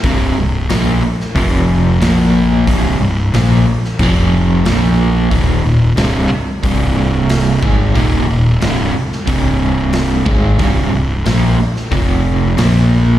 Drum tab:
HH |o---o---o---o---|o---o---o---o---|o---o---o---o---|o---o---o---o---|
SD |----o--o----o---|----o--o----o---|----o-------o---|----o--o----o---|
BD |o-------o-------|o-------o-------|o-------o-----o-|o-------o-----o-|

HH |o---o---o---o---|
SD |----o--o----o---|
BD |o-------o-------|